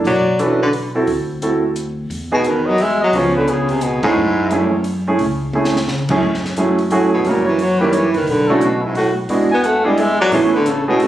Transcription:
0.04 B1 F#3 D5, kick, open hi-hat
0.39 E3 C#4 D4 F#4 A4 B4, closed hi-hat
0.62 D3 B4
0.73 open hi-hat
0.95 C4 E4 F#4 A4
1.07 D2, kick, open hi-hat
1.42 C4 E4 F#4 A4, closed hi-hat
1.76 closed hi-hat
2.10 E2, kick, open hi-hat
2.32 B2 B3 D#4 F#4 G#4
2.44 D#3 B4, closed hi-hat
2.66 F#3 D#5
2.78 E5, open hi-hat
2.83 G#3
3.01 F#3 D#5
3.13 C#2 B3 C#4 F4 G#4 C#5, kick, open hi-hat
3.18 F3
3.36 D3 B4
3.48 C#3 G#4, closed hi-hat
3.69 C3 G#4, open hi-hat
3.81 B2 G#4, closed hi-hat
4.02 G#2 A3 C#4 E4 G#4, muted upright bass stroke, kick, ride
4.16 F#2
4.51 A3 C#4 E4 G#4, closed hi-hat
4.84 open hi-hat
5.08 A3 C#4 E4 G#4
5.19 C#2, kick, open hi-hat
5.53 A3 C#4 E4 G#4, high tom
5.64 snare
5.76 snare
5.87 C#3, snare
6.09 F#2 A3 C#4 E4 G#4, kick, crash
6.22 F#2, kick
6.34 snare
6.45 snare
6.57 F#3 A3 C#4 E4 G#4, closed hi-hat
6.79 open hi-hat
6.91 A2 F#3 A3 C#4 E4 F#4 G#4, open hi-hat
7.11 B2 G#4
7.24 F#2 C#3 G3 A#3 C#4 E4 F#4 A#4, kick, open hi-hat
7.45 E3 C#5
7.59 F#3 C#5, open hi-hat
7.79 D#3 G3 A#3 C#4 E4 G4 B4
7.92 E3 C#5, closed hi-hat
8.12 C#2 B4, open hi-hat
8.17 D#3
8.27 B1 D3 B4, kick, open hi-hat
8.48 A3 C#4 D4 E4 F#4 A4
8.52 C#3
8.61 B2 F#4, closed hi-hat
8.81 E4
8.85 G#2
8.95 A2 F#4, open hi-hat
9.29 E2 G#3 B3 D4 E4 F#4, kick, open hi-hat
9.51 B3 G#5
9.63 A3 F#5, closed hi-hat
9.84 G3 G#3 B3 D4 E4 G#4 D5
9.98 G#3 E5, open hi-hat
10.19 F#3 D5
10.31 A1 E3 A3 B3 C#4 E4 G#4 C#5, kick, open hi-hat
10.52 D3 B4
10.66 C#3 A4, closed hi-hat
10.87 B2 A3 B3 C#4 E4 F#4 G#4
10.99 C#3 A4, open hi-hat

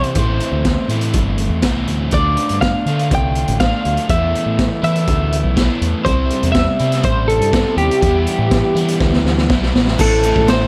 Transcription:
Already playing: C3 E3 G3 C4 E4 C5
0.04 closed hi-hat
0.15 A1 A2 E3 A3 C4 E4, kick, closed hi-hat
0.40 closed hi-hat
0.52 D2
0.65 kick, snare, closed hi-hat
0.88 A2 E3 A3 C4 E4, closed hi-hat
0.93 A2
1.01 closed hi-hat
1.13 G1, kick, closed hi-hat
1.38 closed hi-hat
1.49 E2
1.62 A2 E3 A3 C4 E4, kick, snare, closed hi-hat
1.87 D2, closed hi-hat
2.11 D2 D3 A3 D4 D5, kick, closed hi-hat
2.15 F4
2.37 closed hi-hat
2.49 G2, closed hi-hat
2.61 F5, kick, snare, closed hi-hat
2.86 D3 A3 D4 F4, closed hi-hat
2.90 D3
2.99 closed hi-hat
3.11 C2 G5, kick, closed hi-hat
3.35 closed hi-hat
3.48 A1, closed hi-hat
3.60 D3 A3 D4 F5, kick, snare, closed hi-hat
3.64 F4
3.85 D2, closed hi-hat
3.97 closed hi-hat
4.09 E2 E3 A3 B3 E4 E5, kick, closed hi-hat
4.35 closed hi-hat
4.46 A2
4.59 kick, snare, closed hi-hat
4.82 E3 A3 B3 E4 E5, closed hi-hat
4.95 closed hi-hat
5.07 D2, kick, closed hi-hat
5.32 closed hi-hat
5.44 B1
5.56 E3 A3 B3 E4, kick, snare, closed hi-hat
5.81 E2, closed hi-hat
6.04 C2 C3 G3 C4 E4 C5, kick, closed hi-hat
6.30 closed hi-hat
6.43 E2, closed hi-hat
6.52 E5, kick, snare, closed hi-hat
6.79 C3 G3 C4 E4, closed hi-hat
6.92 snare, closed hi-hat
7.03 A1 C5, kick, closed hi-hat
7.28 A4, closed hi-hat
7.40 G2, closed hi-hat
7.52 C3 G3 C4 E4, kick, snare, closed hi-hat
7.77 D#2 G4, closed hi-hat
7.91 closed hi-hat
8.02 E2 E3 G3 B3 E4, kick, closed hi-hat
8.27 closed hi-hat
8.38 A2
8.51 kick, snare, closed hi-hat
8.75 E3 G3 B3 E4, closed hi-hat
8.88 closed hi-hat
9.00 D2, kick, snare
9.13 snare
9.24 D2, snare
9.38 snare
9.49 B1 E3 G3 B3 E4, kick, snare
9.63 snare
9.74 A1, snare
9.88 snare
9.97 A1 A2 E3 A3 C4 E4 A4 C5 A5, kick, crash, shaker
10.23 A3 C4 E4, ride, shaker
10.36 A1, kick
10.47 E3 A3 C4 E4 C5 C6, snare, ride, shaker

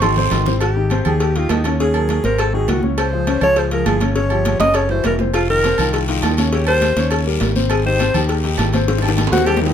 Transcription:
Already playing: G#1
0.02 D#3 D#4 F#4 C6, cowbell, low conga, low agogo, long guiro
0.16 C3 C4 C5, low conga, high timbale
0.31 G#1 D#3 D#4 F#4, cowbell, low conga, low timbale, low agogo, short guiro
0.46 C3 C4 C5, low conga, low timbale, short guiro
0.61 G4, cowbell, high conga, low agogo
0.76 D#3 D#4 G4, high conga
0.90 C3 C4 C5, cowbell, high conga, low timbale, low agogo
1.05 D#2 D#3 D#4 G4 G#4, high conga, low conga, low agogo
1.20 G4, cowbell, high conga, low agogo
1.35 D#3 D#4 F4 G4, cowbell, high conga
1.49 D#2 D#4, cowbell, high conga, low timbale, low agogo
1.64 C#3 C#4 C#5, cowbell, high conga, low agogo
1.80 C#3 C#4 G#4 C#5, cowbell, high conga
1.94 F#3 F#4 A#4, high conga, low agogo
2.09 cowbell, high conga, low timbale, low agogo
2.24 G#1 C3 C4 A#4 C5, cowbell, high conga
2.38 A4, cowbell, high conga, low agogo
2.53 D#3 D#4 F#4 G#4, high conga
2.68 C#2 F#4, cowbell, high conga, low timbale, low agogo
2.83 C#3 C#4 C#5, high conga
2.97 C5, cowbell, high conga, low agogo
3.12 F3 F4 G#4, high conga
3.27 C#3 C#4 C#5, cowbell, high conga, low timbale, low agogo
3.41 C#2 F3 F4 G#4 C#5, high conga, low conga, low agogo
3.56 C5, cowbell, high conga, low agogo
3.71 F3 F4 G#4 A#4, cowbell, high conga
3.86 G1 G#4, cowbell, high conga, low timbale, low agogo
4.00 C#3 C#4 C#5, cowbell, high conga, low agogo
4.16 C#3 C#4 C#5, cowbell
4.30 F3 F4 G4, high conga, low agogo
4.45 cowbell, high conga, low timbale, low agogo
4.60 F#1 C#3 C#4 C#5 D#5, cowbell, high conga, high timbale
4.74 C#5, cowbell, high conga, high timbale, low agogo
4.89 E3 E4 F#4 C5, high conga, low timbale
5.04 F1 A#4, cowbell, high conga, low timbale, low agogo
5.19 C3 C4 C5, high conga, low timbale
5.34 F4, cowbell, high conga, low agogo, long guiro
5.50 D#3 D#4 F4 A#4, high conga
5.63 C3 C4 C5, cowbell, high conga, low timbale, low agogo, short guiro
5.78 C2 D#3 D#4 F4, high conga, low conga, low agogo, short guiro
5.93 cowbell, high conga, low agogo, long guiro
6.08 D#3 D#4 F4, cowbell, high conga
6.23 D#2, cowbell, high conga, low timbale, low agogo, short guiro
6.37 C#3 C#4 C#5, cowbell, high conga, low agogo, short guiro
6.53 C#3 C#4 G4 C#5, cowbell, long guiro
6.67 G3 G4 A#4 C5, high conga, low agogo
6.82 cowbell, high conga, low timbale, low agogo, short guiro
6.97 D#2 C#3 C#4 C#5, cowbell, high conga, short guiro
7.11 cowbell, high conga, low agogo, long guiro
7.26 G3 G4 A#4, high conga
7.40 G#1, cowbell, high conga, low timbale, low agogo, short guiro
7.55 C3 C4 C5, high conga, short guiro
7.70 G#4, cowbell, high conga, low agogo, long guiro
7.85 D#3 D#4 G4 C5, high conga
7.99 C3 C4 C5, cowbell, high conga, low timbale, low agogo, short guiro
8.14 D#2 D#3 D#4 G4, high conga, low conga, low agogo, short guiro
8.29 cowbell, high conga, low agogo, long guiro
8.44 D#3 D#4 G4, cowbell, high conga
8.58 G#1, cowbell, high conga, low timbale, low agogo, short guiro
8.73 C3 C4 C5, cowbell, high conga, low agogo, short guiro
8.88 C3 C4 C5, cowbell, high bongo, high conga, long guiro
8.98 high bongo, low agogo
9.03 D#3 D#4 G4, high conga
9.08 high bongo
9.17 cowbell, high bongo, high conga, high timbale, low agogo, short guiro
9.27 high timbale
9.32 D#2 C3 C4 F#4 C5, cowbell, high conga, short guiro
9.38 low bongo
9.46 G4, cowbell, high conga, low timbale, low agogo, long guiro
9.56 low bongo, low timbale
9.62 D#3 A#3 D#4 G4
9.66 low timbale

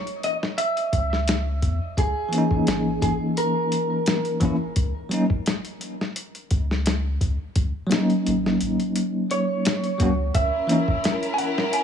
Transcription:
Already playing: C#5
0.07 closed hi-hat
0.23 D#5, closed hi-hat
0.43 snare
0.58 E5, closed hi-hat
0.77 closed hi-hat
0.93 C#2, kick, closed hi-hat
1.13 snare
1.28 snare, closed hi-hat
1.62 E2, kick, closed hi-hat
1.97 C#2 G#4, kick, closed hi-hat
2.29 E3 A#3
2.33 C#4, closed hi-hat
2.38 D#4
2.51 kick
2.67 G#1, snare, closed hi-hat
3.02 G#1 G#4, kick, closed hi-hat
3.37 A#4, closed hi-hat
3.72 closed hi-hat
4.06 snare, closed hi-hat
4.25 closed hi-hat
4.40 E3 A#3 C#4, kick, closed hi-hat
4.45 E4
4.76 C#2, kick, closed hi-hat
5.09 F#3 A#3 C#4, closed hi-hat
5.14 D#4
5.30 kick
5.46 snare, closed hi-hat
5.65 closed hi-hat
5.81 closed hi-hat
6.01 snare
6.16 closed hi-hat
6.35 closed hi-hat
6.51 C#2, kick, closed hi-hat
6.71 snare
6.86 snare, closed hi-hat
7.21 C#2, kick, closed hi-hat
7.56 C#2, kick, closed hi-hat
7.87 F#3 A#3
7.91 C#4, snare, closed hi-hat
7.96 D#4
8.10 closed hi-hat
8.26 G#1, closed hi-hat
8.46 snare
8.61 G#1, closed hi-hat
8.80 closed hi-hat
8.96 closed hi-hat
9.31 C#5, closed hi-hat
9.65 snare, closed hi-hat
9.84 closed hi-hat
9.98 C#2 F#3 A#3 C#4, kick, closed hi-hat
10.03 F#4
10.34 C#2 C#4 E4 A#4 E5, kick, closed hi-hat
10.67 E3 A#3 C#4, closed hi-hat
10.72 D#4
10.88 kick
11.04 snare, closed hi-hat
11.23 closed hi-hat
11.34 G#5
11.38 F#5, closed hi-hat
11.58 snare
11.73 G#5, closed hi-hat

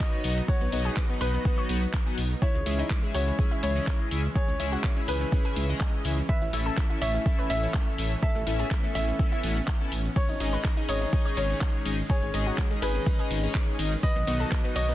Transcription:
Already playing: F#3 B3 D#4 F#4 B4 C#5 D#5
0.00 kick, clap, shaker
0.24 B1 B3 D#4 F#4 D#5, open hi-hat, shaker
0.37 shaker
0.48 F#4 C#5, kick, shaker
0.61 B1 B3, shaker
0.72 B1 B3 D#4 F#4 D#5, open hi-hat, shaker
0.85 G#4, shaker
0.97 B3, kick, clap, shaker
1.09 B3 D#4 F#4 D#5, shaker
1.21 B1 B4, open hi-hat, shaker
1.34 B3, shaker
1.45 B3 D#4 F#4 D#5, kick, shaker
1.58 C#5, shaker
1.69 B1 B3 D#4 F#4 F#5, open hi-hat, shaker
1.82 shaker
1.93 kick, clap, shaker
2.06 B3 D#4 F#4 G#5, shaker
2.18 B1, open hi-hat, shaker
2.31 shaker
2.42 E3 G#3 C#4 E4 C#5, kick, shaker
2.54 C#2 G#3, shaker
2.66 C#2 G#3 C#4 E4 G#4 E5, open hi-hat, shaker
2.79 D#4, shaker
2.90 kick, clap, shaker
3.03 G#3 C#4 E4 G#4 E5, shaker
3.14 C#2 F#4 C#5, open hi-hat, shaker
3.27 G#3, shaker
3.39 G#3 C#4 E4 G#4 E5, kick, shaker
3.51 E4, shaker
3.63 C#2 C#5, open hi-hat, shaker
3.75 C#4 E4 G#4 D#5, shaker
3.87 kick, clap, shaker
4.11 C#2 C#4 E4 G#4 E5, open hi-hat, shaker
4.24 shaker
4.35 G#4 C#5, kick, shaker
4.48 C#2 C#4, shaker
4.60 C#2 C#4 E4 G#4 E5, open hi-hat, shaker
4.72 F#4, shaker
4.84 C#4, kick, clap, shaker
4.96 C#4 E4 G#4 E5, shaker
5.08 C#2 G#4 B4, open hi-hat, shaker
5.21 C#4, shaker
5.32 C#4 E4 G#4 E5, kick, shaker
5.45 G#4, shaker
5.56 C#2, open hi-hat, shaker
5.69 C#4 E4 G#4 D#5, shaker
5.80 kick, clap, shaker
6.05 C#2 C#4 E4 G#4 E5, open hi-hat, shaker
6.18 shaker
6.29 A3 B4 E5, kick, shaker
6.42 A1 E4, shaker
6.53 A1 C#4 E4 A4 E5, open hi-hat, shaker
6.66 A4, shaker
6.77 E4, kick, clap, shaker
6.90 C#4 E4 A4 E5, shaker
7.02 A1 C#5 E5, open hi-hat, shaker
7.14 E4, shaker
7.26 C#4 E4 A4 E5, kick, shaker
7.39 B4, shaker
7.50 A1 E5, open hi-hat, shaker
7.63 C#4 E4 A4 C#5, shaker
7.74 kick, clap, shaker
7.98 A1 C#4 E4 A4 E5, open hi-hat, shaker
8.12 shaker
8.23 B3 A4 E5, kick, shaker
8.35 A1 A3, shaker
8.47 A1 A3 C#4 E4 A4 E5, open hi-hat, shaker
8.59 G#4, shaker
8.71 A3, kick, clap, shaker
8.84 A3 C#4 E4 A4 E5, shaker
8.95 A1 E4 E5, open hi-hat, shaker
9.08 A3, shaker
9.19 A3 C#4 E4 A4 E5, kick, shaker
9.32 E4, shaker
9.43 A1 C#4 E4 A4 F#5, open hi-hat, shaker
9.57 shaker
9.68 kick, clap, shaker
9.80 C#4 E4 A4 A5
9.92 A1, open hi-hat, shaker
10.05 shaker
10.16 D#3 G#3 C#5, kick, ride, shaker
10.29 G#1 D#4, shaker
10.40 G#1 C#4 D#4 G#4 D#5, open hi-hat, ride, shaker
10.53 B4, shaker
10.64 D#4, kick, clap, ride, shaker
10.77 C#4 D#4 G#4 D#5, shaker
10.89 G#1 C#5 D#5, open hi-hat, ride, shaker
11.01 D#4, shaker
11.13 C#4 D#4 G#4 D#5, kick, ride, shaker
11.26 C#5, shaker
11.37 G#1 C#5, open hi-hat, ride, shaker
11.50 C#4 D#4 G#4 C#5, shaker
11.61 kick, clap, ride, shaker
11.85 G#1 C#4 D#4 G#4 D#5, open hi-hat, ride, shaker
11.99 shaker
12.10 G#4 C#5, kick, ride, shaker
12.22 G#1 G#3, shaker
12.34 G#1 G#3 C#4 D#4 G#4 D#5, open hi-hat, ride, shaker
12.47 F#4, shaker
12.58 G#3, kick, clap, ride, shaker
12.71 G#3 C#4 D#4 G#4 D#5, shaker
12.82 G#1 G#4 B4, open hi-hat, ride, shaker
12.95 G#3, shaker
13.06 G#3 C#4 D#4 G#4 D#5, kick, ride, shaker
13.19 G#4, shaker
13.31 G#1, open hi-hat, ride, shaker
13.43 C#4 D#4 G#4 C#5, shaker
13.55 kick, clap, ride, shaker
13.79 G#1 C#4 D#4 G#4 D#5, open hi-hat, ride, shaker
13.92 shaker
14.03 F#3 B3 B4 D#5, kick, ride, shaker
14.16 B1 B3, shaker
14.27 B1 B3 D#4 F#4 D#5, open hi-hat, ride, shaker
14.40 A4, shaker
14.51 B3, kick, clap, ride, shaker
14.64 B3 D#4 F#4 D#5, shaker
14.76 B1 C#5 D#5, open hi-hat, ride, shaker
14.88 B3, shaker

